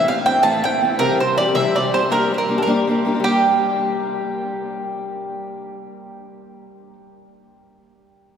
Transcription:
0.08 steel-string acoustic guitar E3 A3 C4 E4, mandolin F5, five-string banjo F5
0.26 steel-string acoustic guitar E3 A3 C4 E4, mandolin G5, five-string banjo G5
0.34 steel-string acoustic guitar A3 C4 E4
0.43 steel-string acoustic guitar A2 E3 A3 C4 E4, mandolin A5, five-string banjo A5
0.63 steel-string acoustic guitar E3 A3 C4 E4, mandolin G5, five-string banjo G5
0.81 steel-string acoustic guitar E3 A3 C4 E4
0.90 steel-string acoustic guitar A3 C4 E4
0.99 steel-string acoustic guitar C3 E3 G3 C4 G4, mandolin A#4, five-string banjo A#4
1.19 steel-string acoustic guitar E3 G3 C4 G4, five-string banjo C5, mandolin C5
1.37 steel-string acoustic guitar E3 G3 C4 G4, mandolin D5, five-string banjo D5
1.46 steel-string acoustic guitar G3 C4 G4
1.55 steel-string acoustic guitar C3 E3 G3 C4 G4, mandolin E5, five-string banjo E5
1.75 steel-string acoustic guitar E3 G3 C4 G4, five-string banjo D5, mandolin D5
1.92 steel-string acoustic guitar E3 G3 C4 G4, five-string banjo C5, mandolin C5
2.01 steel-string acoustic guitar G3 C4 G4
2.10 steel-string acoustic guitar G3 A#3 D4 G4, five-string banjo A#4, mandolin A#4
2.31 steel-string acoustic guitar G3 A#3 D4 G4, mandolin C5
2.38 five-string banjo A#4, mandolin A#4
2.48 steel-string acoustic guitar G3 A#3 D4 G4
2.57 steel-string acoustic guitar A#3 D4 G4, mandolin A4
2.62 steel-string acoustic guitar G3, five-string banjo A#4, mandolin A#4
2.67 steel-string acoustic guitar A#3 D4 G4
2.87 steel-string acoustic guitar G3 A#3 D4 G4
3.05 steel-string acoustic guitar G3 A#3 D4 G4
3.14 steel-string acoustic guitar A#3 D4 G4
3.20 steel-string acoustic guitar G3
3.24 steel-string acoustic guitar A#3, mandolin G4, five-string banjo G4
3.28 steel-string acoustic guitar D4 G4

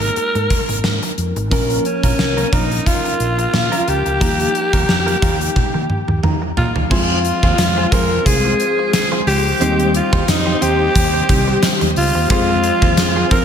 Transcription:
Already playing: fm electric piano G#3 A#3 D#4 A#4, alto saxophone A#4
0.02 muted clean electric guitar stroke, closed hi-hat
0.16 muted clean electric guitar stroke, muted fretless electric bass stroke, closed hi-hat
0.35 fretless electric bass G#2, muted clean electric guitar stroke, closed hi-hat
0.50 kick, closed hi-hat
0.69 fretless electric bass G#1, muted clean electric guitar stroke, closed hi-hat
0.84 fretless electric bass G#2, muted clean electric guitar stroke, snare
1.03 muted clean electric guitar stroke, closed hi-hat
1.18 fretless electric bass F2, closed hi-hat
1.36 fretless electric bass G#1, muted clean electric guitar stroke, closed hi-hat
1.50 fretless electric bass A#1, fm electric piano F3 A#3 C#4 A#4, clean electric guitar A#3 C#4 F4 A#4, kick, closed hi-hat
1.70 closed hi-hat
1.85 alto saxophone C#4, muted clean electric guitar stroke, closed hi-hat
2.03 fretless electric bass A#1, clean electric guitar A#3 C#4 F4 A#4, kick, closed hi-hat
2.18 fretless electric bass C2, muted clean electric guitar stroke, snare
2.37 clean electric guitar A#3 C#4 F4 A#4, closed hi-hat
2.52 fretless electric bass A#1, clean electric guitar A#3 C#4 F4 A#4, alto saxophone D#4, kick, closed hi-hat
2.71 muted clean electric guitar stroke, closed hi-hat
2.86 alto saxophone F4, muted clean electric guitar stroke, kick, closed hi-hat
3.05 muted clean electric guitar stroke, closed hi-hat
3.20 fretless electric bass A#1, closed hi-hat
3.38 muted clean electric guitar stroke, closed hi-hat
3.54 fretless electric bass A#2, muted clean electric guitar stroke, snare
3.72 clean electric guitar A#3 C#4 F4 A#4, closed hi-hat
3.87 fretless electric bass C#2, alto saxophone G4, muted clean electric guitar stroke, closed hi-hat
4.06 fretless electric bass C#2, muted clean electric guitar stroke, closed hi-hat
4.20 fretless electric bass D#2, fm electric piano F3 A#3 D#4 G4, clean electric guitar G3 A#3 F4 A#4, kick, closed hi-hat
4.40 closed hi-hat
4.54 muted clean electric guitar stroke, closed hi-hat
4.73 fretless electric bass D#2, clean electric guitar G3 A#3 F4 A#4, kick, closed hi-hat
4.88 fretless electric bass F2, muted clean electric guitar stroke, snare
5.06 clean electric guitar G3 A#3 F4 A#4, closed hi-hat
5.22 fretless electric bass D#2, clean electric guitar G3 A#3 F4 A#4, kick, closed hi-hat
5.40 muted clean electric guitar stroke, closed hi-hat
5.56 muted clean electric guitar stroke, muted fretless electric bass stroke, kick, high tom
5.74 fretless electric bass D#3, muted clean electric guitar stroke
5.90 mid tom
6.08 fretless electric bass D#2, muted clean electric guitar stroke, mid tom
6.23 fretless electric bass D#3, fm electric piano A#5, muted clean electric guitar stroke, mid tom
6.42 muted clean electric guitar stroke
6.57 fretless electric bass A#2, alto saxophone F4, fm electric piano F5, floor tom
6.75 fretless electric bass D#2, muted clean electric guitar stroke, floor tom
6.89 fretless electric bass F2, fm electric piano F3 G#3 C4 F4, string machine G#3 C5 F5 C6, clean electric guitar C4 F4 G#4 C5, alto saxophone F4, kick, crash
7.25 muted clean electric guitar stroke, closed hi-hat
7.43 fretless electric bass D#2, clean electric guitar C4 F4 G#4 C5, kick
7.58 fretless electric bass F2, snare, closed hi-hat
7.77 clean electric guitar C4 F4 G#4 C5
7.92 fretless electric bass F2, clean electric guitar C4 F4 G#4 C5, alto saxophone A#4, kick, closed hi-hat
8.26 fretless electric bass C2, alto saxophone G#4, muted clean electric guitar stroke, kick, closed hi-hat
8.45 muted clean electric guitar stroke
8.60 closed hi-hat
8.79 muted clean electric guitar stroke
8.93 alto saxophone G#4, muted clean electric guitar stroke, snare, closed hi-hat
9.12 clean electric guitar C4 F4 G#4 C5
9.27 fretless electric bass C#2, alto saxophone G4, muted clean electric guitar stroke, open hi-hat
9.45 muted clean electric guitar stroke
9.59 fretless electric bass D#2, fm electric piano D#3 G3 C4 G4, clean electric guitar C4 D#4 G4 C5, string machine G4 C5 D#5 C6, closed hi-hat
9.80 closed hi-hat
9.94 alto saxophone F4, muted clean electric guitar stroke, closed hi-hat
10.12 fretless electric bass D#2, clean electric guitar C4 D#4 G4 C5, kick
10.28 fretless electric bass F2, alto saxophone D#4, muted clean electric guitar stroke, snare, closed hi-hat, tambourine
10.46 clean electric guitar C4 D#4 G4 C5
10.61 fretless electric bass D#2, clean electric guitar C4 D#4 G4 C5, alto saxophone G4, closed hi-hat
10.80 muted clean electric guitar stroke
10.95 fretless electric bass D#2, muted clean electric guitar stroke, kick, closed hi-hat
11.14 muted clean electric guitar stroke
11.28 fretless electric bass C2, fm electric piano D#3 G3 C4 G4, kick, closed hi-hat
11.48 muted clean electric guitar stroke
11.62 muted clean electric guitar stroke, snare, closed hi-hat, tambourine
11.81 fretless electric bass D#2, muted clean electric guitar stroke, closed hi-hat
11.96 fretless electric bass C#2, alto saxophone F4, open hi-hat
12.15 fretless electric bass D#2, muted clean electric guitar stroke
12.29 fretless electric bass F2, fm electric piano F3 G#3 C4 G#4, clean electric guitar C4 F4 G#4 C5, alto saxophone F4, string machine G#4 F5 C6, kick, closed hi-hat
12.64 muted clean electric guitar stroke, closed hi-hat
12.82 fretless electric bass D#2, clean electric guitar C4 F4 G#4 C5, kick
12.97 fretless electric bass F2, muted clean electric guitar stroke, snare, closed hi-hat, tambourine
13.16 clean electric guitar C4 F4 G#4 C5
13.31 fretless electric bass F2, clean electric guitar C4 F4 G#4 C5, alto saxophone A#4, kick, closed hi-hat

